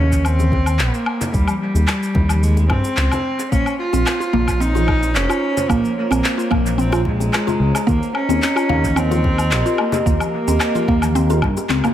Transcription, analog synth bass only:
0.00 0.81 D#2 medium
0.79 0.91 A#1 medium
1.34 1.46 D#2 medium
1.75 1.86 D#2 medium
2.16 2.70 D#2 medium
2.70 2.82 G2 medium
2.97 3.09 C#2 medium
3.52 3.64 A#1 medium
3.93 4.04 A#1 medium
4.33 5.16 A#1 loud
5.15 5.27 F1 medium
5.70 5.82 A#1 medium
6.11 6.22 A#1 medium
6.51 7.30 A#1 medium
7.60 7.72 C#2 medium
7.88 8.00 D#2 loud
8.29 8.40 D#2 medium
8.70 9.53 D#2 loud
9.51 9.63 A#1 medium
10.06 10.18 D#2 loud
10.47 10.58 D#2 medium
10.88 11.42 D#2 loud
11.43 11.55 G2 medium
11.69 11.81 C#2 medium

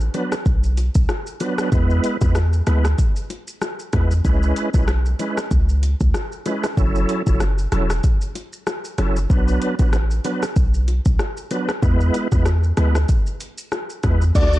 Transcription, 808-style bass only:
0.46 0.90 B1 loud
0.95 1.08 B1 medium
1.72 2.00 E2 loud
2.22 2.62 E2 medium
2.67 2.95 D2 medium
3.93 4.21 E2 medium
4.25 4.53 C#2 loud
4.74 5.15 B1 medium
5.51 5.95 C#2 loud
6.01 6.13 C#2 medium
6.77 7.06 F#1 loud
7.27 7.67 F#1 medium
7.72 8.00 E1 medium
8.98 9.27 F#1 loud
9.30 9.58 B1 loud
9.79 10.20 A1 loud
10.56 11.00 B1 loud
11.06 11.18 B1 medium
11.83 12.11 E2 loud
12.32 12.73 E2 medium
12.77 13.06 D2 medium
14.04 14.32 E2 loud
14.35 14.59 D2 loud

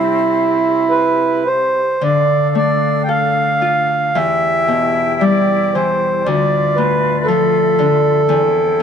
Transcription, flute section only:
0.00 1.78 C4 medium
0.00 1.97 G4 medium
0.00 1.77 E5 medium
2.02 4.12 D4 medium
2.02 3.92 A4 medium
2.02 4.12 F5 medium
4.15 6.24 E4 medium
4.15 6.24 G4 medium
4.15 6.24 G5 medium
6.27 8.26 F4 medium
6.27 8.26 D5 medium
6.27 8.26 E5 medium
8.27 8.83 C4 medium
8.27 8.83 E4 medium
8.27 8.83 G5 medium

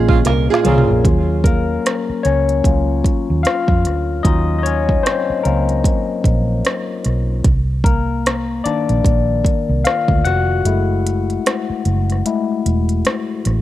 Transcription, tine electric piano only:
0.00 0.63 A#2 medium
0.00 0.65 A#3 medium
0.00 1.07 C4 medium
0.00 0.65 C#4 medium
0.00 0.67 G#4 medium
0.00 1.07 D#5 medium
0.63 1.02 A#2 medium
0.63 1.03 A#3 medium
0.63 1.04 C#4 medium
0.63 1.04 G#4 medium
0.68 1.05 A#4 medium
1.05 1.61 F#3 medium
1.05 1.62 C#4 soft
1.05 1.62 F4 medium
1.44 2.22 A#3 medium
1.44 2.27 A#4 medium
2.23 2.64 C#4 medium
2.23 3.48 C#5 medium
2.65 3.01 F#3 soft
2.65 3.01 C#4 soft
2.65 3.01 F4 soft
3.43 4.22 F4 medium
3.43 4.26 F5 medium
4.23 5.44 F#3 medium
4.23 4.65 C#4 medium
4.23 4.58 D#4 medium
4.23 5.45 F4 medium
4.23 4.57 D#5 loud
4.59 4.64 D#5 medium
4.63 5.03 C#4 medium
4.63 5.05 C#5 medium
5.03 5.43 C4 medium
5.03 5.45 C5 medium
5.43 5.81 F#3 soft
5.43 7.02 A#3 medium
5.43 5.81 C#4 soft
5.43 5.82 F4 medium
5.43 7.00 A#4 medium
7.84 8.62 A#3 medium
7.84 8.67 A#4 medium
8.64 10.61 D#3 medium
8.64 10.61 A#3 soft
8.64 9.82 D4 medium
8.64 9.88 D5 medium
9.84 10.23 F4 medium
9.84 10.26 F5 medium
10.25 13.02 F#4 medium
10.25 13.01 F#5 loud
10.65 11.21 G#3 medium
10.65 11.22 A3 medium
10.65 11.22 E4 medium
12.26 12.61 G#3 soft
12.26 12.62 A3 soft
12.26 12.62 E4 medium

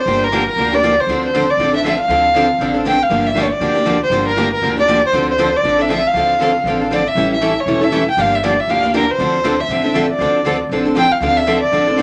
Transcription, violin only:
0.00 0.25 C5 medium
0.24 0.48 A#4 medium
0.49 0.76 A#4 medium
0.75 1.02 D5 medium
1.01 1.24 C5 medium
1.26 1.52 C5 medium
1.50 1.74 D5 medium
1.76 1.85 E5 medium
1.86 1.98 E5 medium
2.01 2.72 F5 medium
2.88 3.04 G5 medium
3.03 3.28 F5 medium
3.27 3.44 E5 medium
3.43 3.54 C#5 soft
3.52 4.02 D5 medium
4.03 4.26 C5 medium
4.29 4.51 A#4 medium
4.54 4.77 A#4 medium
4.80 5.02 D5 medium
5.06 5.28 C5 medium
5.31 5.58 C5 medium
5.56 5.83 D5 medium
5.81 5.91 E5 medium
5.94 6.09 E5 medium
6.07 6.82 F5 medium
6.94 7.09 D5 medium
7.08 7.32 E5 medium
7.34 7.62 E5 medium
7.60 7.85 C#5 medium
7.84 8.08 E5 medium
8.11 8.22 G5 medium
8.21 8.37 F5 medium
8.35 8.45 E5 medium
8.46 8.61 D5 medium
8.60 8.72 E5 medium
8.70 8.95 F5 medium
8.97 9.12 A#4 medium
9.11 9.62 C5 medium
9.61 9.96 E5 medium
10.12 10.58 D5 medium
10.99 11.13 G5 medium
11.12 11.22 F5 medium
11.24 11.38 F5 medium
11.37 11.62 E5 medium
11.63 12.02 D5 medium

